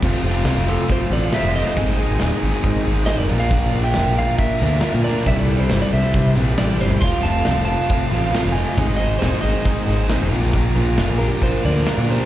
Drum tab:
CC |x---------------|----------------|----------------|----------------|
HH |----o---o---o---|o---o---o---o---|o---o---o---o---|o---o---o---o---|
SD |----o-------o--o|----o-------o--o|----o-----o-o--o|----o-------o-o-|
FT |----------------|----------------|----------------|---------------o|
BD |o-------o-------|o-------o-------|o-------o-------|o-------o-------|

CC |----------------|----------------|----------------|
HH |o---o---o---o---|o---o---o---o---|o---o---o---o---|
SD |----o-------o---|----o-----o-o--o|----o-------o---|
FT |----------------|----------------|----------------|
BD |o-------o-------|o-------o-------|o-------o-------|